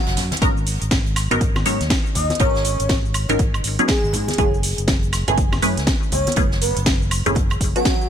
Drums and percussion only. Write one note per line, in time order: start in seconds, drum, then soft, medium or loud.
0.07 snare medium
0.07 closed hi-hat medium
0.17 snare medium
0.17 closed hi-hat medium
0.17 open hi-hat medium
0.17 low conga medium
0.32 snare medium
0.32 closed hi-hat medium
0.32 closed hi-hat soft
0.32 high conga loud
0.37 closed hi-hat medium
0.42 kick loud
0.42 closed hi-hat medium
0.42 cabasa soft
0.57 cabasa soft
0.67 open hi-hat loud
0.67 open hi-hat medium
0.67 cabasa medium
0.82 closed hi-hat soft
0.82 cabasa soft
0.91 kick loud
0.91 snare loud
0.91 closed hi-hat medium
0.91 cabasa soft
1.06 closed hi-hat soft
1.06 cabasa soft
1.16 snare soft
1.16 closed hi-hat medium
1.16 open hi-hat medium
1.16 cabasa medium
1.16 high woodblock medium
1.31 closed hi-hat soft
1.31 low conga medium
1.31 cabasa soft
1.41 kick loud
1.41 closed hi-hat medium
1.41 cabasa soft
1.56 snare soft
1.56 high conga medium
1.56 cabasa soft
1.56 high woodblock medium
1.65 closed hi-hat medium
1.65 open hi-hat loud
1.65 cabasa medium
1.81 snare soft
1.81 closed hi-hat soft
1.81 cabasa soft
1.90 kick loud
1.90 snare loud
1.90 closed hi-hat medium
1.90 high conga medium
1.90 cabasa soft
2.06 cabasa soft
2.15 closed hi-hat medium
2.15 open hi-hat medium
2.15 low conga medium
2.15 cabasa medium
2.30 snare soft
2.30 closed hi-hat soft
2.30 high conga medium
2.30 cabasa soft
2.35 closed hi-hat medium
2.39 kick loud
2.39 closed hi-hat medium
2.39 cabasa soft
2.56 snare medium
2.56 cabasa soft
2.65 closed hi-hat medium
2.65 open hi-hat loud
2.65 cabasa medium
2.80 closed hi-hat soft
2.80 closed hi-hat medium
2.80 cabasa soft
2.89 kick loud
2.89 snare loud
2.89 closed hi-hat medium
2.89 cabasa soft
3.05 cabasa soft
3.14 closed hi-hat medium
3.14 open hi-hat medium
3.14 cabasa medium
3.14 high woodblock medium
3.29 closed hi-hat medium
3.29 high conga medium
3.29 low conga medium
3.29 cabasa soft
3.39 kick loud
3.39 closed hi-hat medium
3.39 cabasa soft
3.54 closed hi-hat soft
3.54 cabasa soft
3.54 high woodblock medium
3.64 closed hi-hat medium
3.64 open hi-hat loud
3.64 cabasa medium
3.79 closed hi-hat medium
3.79 cabasa soft
3.88 kick loud
3.88 snare loud
3.88 closed hi-hat medium
3.88 cabasa soft
4.04 cabasa soft
4.13 closed hi-hat medium
4.13 open hi-hat medium
4.13 low conga medium
4.13 cabasa medium
4.28 snare soft
4.28 closed hi-hat soft
4.28 high conga medium
4.28 cabasa soft
4.33 closed hi-hat medium
4.38 kick loud
4.38 closed hi-hat medium
4.38 cabasa soft
4.54 cabasa soft
4.63 open hi-hat loud
4.63 open hi-hat medium
4.63 cabasa medium
4.78 closed hi-hat soft
4.78 closed hi-hat medium
4.78 cabasa soft
4.88 kick loud
4.88 snare loud
4.88 closed hi-hat medium
4.88 cabasa soft
5.02 closed hi-hat soft
5.02 cabasa soft
5.13 snare soft
5.13 closed hi-hat medium
5.13 open hi-hat medium
5.13 cabasa medium
5.13 high woodblock medium
5.28 closed hi-hat medium
5.28 low conga medium
5.28 cabasa soft
5.38 kick loud
5.38 closed hi-hat medium
5.38 cabasa soft
5.52 snare soft
5.52 high conga medium
5.52 cabasa soft
5.52 high woodblock medium
5.62 closed hi-hat medium
5.62 open hi-hat medium
5.62 cabasa medium
5.77 snare soft
5.77 closed hi-hat medium
5.77 cabasa soft
5.87 kick loud
5.87 snare loud
5.87 closed hi-hat medium
5.87 high conga medium
5.87 cabasa soft
6.03 cabasa soft
6.12 closed hi-hat medium
6.12 open hi-hat medium
6.12 low conga medium
6.12 cabasa medium
6.27 snare soft
6.27 closed hi-hat medium
6.27 high conga medium
6.27 cabasa soft
6.32 closed hi-hat medium
6.36 kick loud
6.36 closed hi-hat medium
6.36 cabasa soft
6.51 snare medium
6.51 cabasa soft
6.61 closed hi-hat medium
6.61 open hi-hat loud
6.61 cabasa medium
6.77 closed hi-hat medium
6.77 closed hi-hat soft
6.77 cabasa soft
6.86 kick loud
6.86 snare loud
6.86 closed hi-hat medium
6.86 cabasa soft
7.02 cabasa soft
7.11 closed hi-hat medium
7.11 open hi-hat medium
7.11 cabasa medium
7.11 high woodblock medium
7.26 closed hi-hat medium
7.26 high conga medium
7.26 low conga medium
7.26 cabasa soft
7.35 kick loud
7.35 closed hi-hat medium
7.35 low conga medium
7.35 cabasa soft
7.50 closed hi-hat soft
7.50 cabasa soft
7.50 high woodblock medium
7.61 kick medium
7.61 closed hi-hat medium
7.61 open hi-hat loud
7.61 cabasa medium
7.76 closed hi-hat medium
7.76 cabasa soft
7.85 kick loud
7.85 snare loud
7.85 closed hi-hat medium
7.85 cabasa soft
8.01 cabasa soft